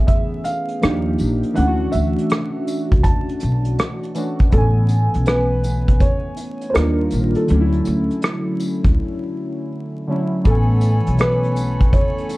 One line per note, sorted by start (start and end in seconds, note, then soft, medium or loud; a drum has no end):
0.00 0.77 E3 medium
0.00 0.78 A3 medium
0.00 0.79 B3 medium
0.00 0.80 C#4 medium
0.00 0.81 G#4 medium
0.07 0.46 E5 medium
0.07 kick medium
0.07 closed hi-hat medium
0.44 1.59 F5 medium
0.44 closed hi-hat medium
0.44 tambourine soft
0.68 closed hi-hat soft
0.81 1.15 D#2 medium
0.81 1.56 F3 medium
0.81 1.56 A#3 medium
0.81 1.57 D4 medium
0.81 1.57 D#4 medium
0.81 1.58 G4 medium
0.81 cross-stick loud
0.81 closed hi-hat medium
1.18 1.41 A#1 medium
1.18 closed hi-hat medium
1.18 tambourine medium
1.43 closed hi-hat soft
1.54 4.10 E3 medium
1.54 4.11 A3 medium
1.54 4.12 C#4 medium
1.54 1.94 F#5 medium
1.54 closed hi-hat medium
1.58 1.89 D2 medium
1.58 4.13 D4 medium
1.58 1.67 E4 medium
1.67 4.17 F#4 medium
1.92 2.15 D2 medium
1.92 3.07 E5 medium
1.92 closed hi-hat medium
1.92 tambourine soft
2.18 closed hi-hat soft
2.29 cross-stick loud
2.29 closed hi-hat medium
2.67 closed hi-hat medium
2.67 tambourine medium
2.92 3.03 C#2 medium
2.92 kick medium
2.92 closed hi-hat medium
3.03 3.74 A5 medium
3.03 kick medium
3.03 closed hi-hat medium
3.29 closed hi-hat soft
3.40 3.74 B1 medium
3.40 closed hi-hat medium
3.40 tambourine soft
3.65 closed hi-hat soft
3.79 cross-stick loud
3.79 closed hi-hat medium
4.03 closed hi-hat soft
4.14 4.49 E3 medium
4.14 4.51 A3 soft
4.14 4.53 C#4 medium
4.14 4.54 D4 medium
4.14 4.54 F#4 medium
4.14 closed hi-hat soft
4.14 tambourine medium
4.39 kick medium
4.39 closed hi-hat soft
4.50 5.06 A1 loud
4.50 6.70 E3 medium
4.50 6.71 A3 medium
4.50 6.72 B3 medium
4.50 5.29 A4 medium
4.50 kick loud
4.50 closed hi-hat medium
4.56 6.72 C#4 medium
4.56 6.73 G#5 medium
4.89 closed hi-hat medium
4.89 tambourine soft
5.14 5.97 B1 medium
5.14 closed hi-hat soft
5.26 6.03 B4 loud
5.26 cross-stick loud
5.26 closed hi-hat medium
5.63 closed hi-hat medium
5.63 tambourine medium
5.88 kick medium
5.88 closed hi-hat medium
6.00 6.72 C#5 loud
6.00 kick medium
6.00 closed hi-hat medium
6.37 closed hi-hat medium
6.37 tambourine soft
6.61 closed hi-hat soft
6.70 6.75 C5 medium
6.74 7.07 D#2 medium
6.74 7.49 D#3 medium
6.74 7.49 G3 medium
6.74 7.50 A#3 medium
6.74 7.50 D4 medium
6.74 7.50 F4 medium
6.74 7.38 A#4 medium
6.74 cross-stick loud
6.74 closed hi-hat medium
7.10 7.33 A#1 medium
7.10 closed hi-hat medium
7.10 tambourine medium
7.35 9.67 A4 medium
7.35 closed hi-hat soft
7.47 7.82 D2 loud
7.47 10.03 D3 medium
7.47 10.04 F#3 medium
7.47 10.05 A3 medium
7.47 closed hi-hat medium
7.52 10.06 C#4 medium
7.52 7.60 D4 soft
7.60 10.10 E4 medium
7.73 closed hi-hat soft
7.85 8.08 D2 medium
7.85 closed hi-hat medium
7.85 tambourine soft
8.10 closed hi-hat soft
8.22 cross-stick loud
8.22 closed hi-hat medium
8.60 closed hi-hat medium
8.60 tambourine medium
8.84 8.96 C#2 medium
8.84 kick medium
8.84 closed hi-hat medium
10.07 10.45 D3 medium
10.07 10.45 F#3 soft
10.07 10.44 A3 soft
10.07 10.46 C#4 medium
10.07 10.47 E4 medium
10.44 10.98 A1 medium
10.44 12.37 E3 medium
10.44 12.37 A3 medium
10.44 12.37 B3 medium
10.44 12.37 A4 medium
10.44 11.22 A4 medium
10.44 12.37 C#5 medium
10.44 12.37 G#5 medium
10.44 12.37 B5 medium
10.44 kick loud
10.44 closed hi-hat medium
10.49 12.37 C#4 medium
10.49 12.37 G#5 medium
10.81 closed hi-hat medium
10.81 tambourine medium
11.07 11.90 B1 medium
11.07 closed hi-hat soft
11.18 11.90 B4 medium
11.18 cross-stick loud
11.18 closed hi-hat medium
11.44 closed hi-hat soft
11.56 closed hi-hat medium
11.56 tambourine medium
11.81 kick medium
11.81 closed hi-hat medium
11.93 12.37 C#5 medium
11.93 kick medium
11.93 closed hi-hat medium
12.18 closed hi-hat soft
12.29 closed hi-hat medium
12.29 tambourine soft